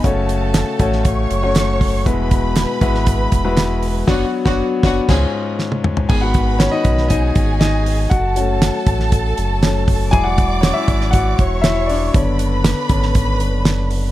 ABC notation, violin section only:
X:1
M:4/4
L:1/16
Q:1/4=119
K:F#m
V:1 name="Violin section"
[Aa]8 [cc']8 | [Bb]16 | [Ff]2 z [Ff]2 z [Ff]2 [Gg]2 z6 | [Bb]8 [Gg]8 |
[Aa]16 | [dd']8- [dd']2 [cc']6 | [Bb]16 |]